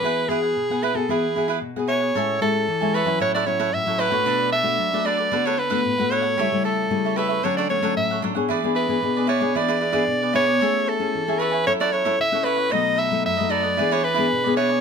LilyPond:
<<
  \new Staff \with { instrumentName = "Soprano saxophone" } { \time 4/4 \key a \major \tempo 4 = 113 b'8 gis'4 b'16 a'16 gis'4 r8 cis''8~ | cis''8 a'4 b'8 cis''16 d''16 cis''8 e''8 b'8~ | b'8 e''4 d''8. cis''16 b'4 cis''8~ | cis''8 a'4 b'8 cis''16 d''16 cis''8 e''8 r8 |
r8 b'4 cis''8 d''4. cis''8~ | cis''8 a'4 b'8 cis''16 d''16 cis''8 e''8 b'8 | dis''8 e''8 e''8 d''8. cis''16 b'4 cis''8 | }
  \new Staff \with { instrumentName = "Cavaquinho" } { \time 4/4 \key a \major <e' gis' b' fis''>8 <e' gis' b' fis''>16 <gis' b' fis''>8 <gis' b' fis''>16 <e' gis' b' fis''>16 <gis' b' fis''>16 <e' gis' b' fis''>8 <e' gis' b' fis''>16 <e' gis' b' fis''>16 r16 <gis' b' fis''>16 <e' gis' b' fis''>16 <gis' b' fis''>16 | <a' cis'' e'' gis''>8 <a' cis'' e'' gis''>8. <cis'' e'' gis''>16 <a' cis'' e'' gis''>16 <cis'' e'' gis''>16 <e' a' cis'' fis''>16 <e' a' cis'' fis''>16 <e' a' cis'' fis''>16 <e' a' cis'' fis''>16 r16 <a' cis'' fis''>16 <e' a' cis'' fis''>16 <a' cis'' fis''>16 | <d' a' b' d''>8 <d' a' b' d''>8. <a' b' d''>16 <d' a' b' d''>16 <a' b' d''>16 <d' a' b' fis''>16 <d' a' b' fis''>16 <d' a' b' fis''>16 <d' a' b' fis''>16 r16 <a' b' fis''>16 <d' a' b' fis''>16 <a' b' fis''>16 | <g' a' cis'' e''>8 <g' a' cis'' e''>8. <a' cis'' e''>16 <g' a' cis'' e''>16 <a' cis'' e''>16 <d' a' cis'' fis''>16 <d' a' cis'' fis''>16 <d' a' cis'' fis''>16 <d' a' cis'' fis''>16 r16 <a' cis'' fis''>16 <d' a' cis'' fis''>16 <a' cis'' fis''>16 |
<e' gis' b' d''>8 <e' gis' b' d''>8. <gis' b' d''>16 <e' gis' b' d''>16 <gis' b' d''>16 <e' gis' b' d''>16 <e' gis' b' d''>16 <e' gis' b' d''>16 <e' gis' b' d''>16 r16 <gis' b' d''>16 <e' gis' b' d''>16 <gis' b' d''>16 | <a' cis'' e'' gis''>8 <a' cis'' e'' gis''>8. <cis'' e'' gis''>16 <a' cis'' e'' gis''>16 <cis'' e'' gis''>16 <e' a' cis'' fis''>16 <e' a' cis'' fis''>16 <e' a' cis'' fis''>16 <e' a' cis'' fis''>16 r16 <a' cis'' fis''>16 <e' a' cis'' fis''>16 <a' cis'' fis''>16 | <dis' a' b' dis''>8 <dis' a' b' dis''>8. <a' b' dis''>16 <dis' a' b' dis''>16 <a' b' dis''>16 <e' gis' b' d''>16 <e' gis' b' d''>16 <e' gis' b' d''>16 <e' gis' b' d''>16 r16 <gis' b' d''>16 <e' gis' b' d''>16 <gis' b' d''>16 | }
  \new Staff \with { instrumentName = "Nylon-string guitar" } { \time 4/4 \key a \major << { <b fis' gis'>8 <b fis' gis'>8 r16 <b fis' gis'>8 <b fis' gis'>16 <b fis' gis'>16 r16 <b fis' gis'>8 r16 <b fis' gis'>8. | <gis cis' e'>8 <gis cis' e'>8 r16 <gis cis' e'>8 <fis cis' e'>8. <fis cis' e'>8. <fis cis' e'>8 <a d' fis'>16~ | <a d' fis'>8 r16 <a d' fis'>8 <a d' fis'>8. <a b fis'>8 r16 <a b fis'>8 <a b fis'>8. | <g a e'>16 <g a e'>8. <g a e'>4 <fis a cis'>8 <fis a cis'>16 <fis a cis'>8. <fis a cis'>16 <b d' gis'>16~ |
<b d' gis'>16 <b d' gis'>8 <b d' gis'>16 <b d' gis'>8 r16 <b d' gis'>16 <b d' gis'>8 r16 <b d' gis'>8. <b d' gis'>16 r16 | <cis' e' gis'>8. <cis' e' gis'>8 <cis' e' gis'>8. <cis' e' a'>8. <cis' e' a'>8 <cis' e' a'>8. | <fis a dis'>8. <fis a dis'>8 <fis a dis'>8. <b d' gis'>8 r16 <b d' gis'>8 <b d' gis'>8. | } \\ { e4 b,4 e4 b,4 | a,4 e4 a,4 a,4 | b,4 fis4 d4 a,4 | cis4 cis4 d4 a,4 |
e4 b,4 e4 b,4 | a4 e4 fis4 cis4 | b,4 fis,4 e4 b,4 | } >> }
>>